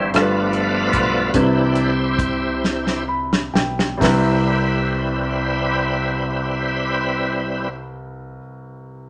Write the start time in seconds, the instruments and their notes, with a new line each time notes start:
Already playing: grand piano G2 G3 C4 E4 C5 F#5
0.14 fingered electric bass G1, grand piano G2 G3 D4 F4 A4, tonewheel organ F3 A3 B3 F4 B4 D5, cross-stick, closed hi-hat
0.22 grand piano B4
0.53 closed hi-hat
0.93 fingered electric bass B1, kick, closed hi-hat
1.28 tonewheel organ B4
1.33 fingered electric bass C2, grand piano C3 G3 C4 D4 B4, tonewheel organ E3 D4 E4 G4 B4 C5, kick, closed hi-hat
1.41 grand piano E4
1.75 closed hi-hat
2.19 kick, closed hi-hat
2.64 snare
2.87 snare
3.08 grand piano B5
3.33 snare
3.54 fingered electric bass B1, grand piano G5, snare
3.79 snare
3.98 grand piano C2 G3 C4, fingered electric bass C2, tonewheel organ G3 E4 B4, kick, open hi-hat
4.02 tonewheel organ C4, grand piano E4 B4, snare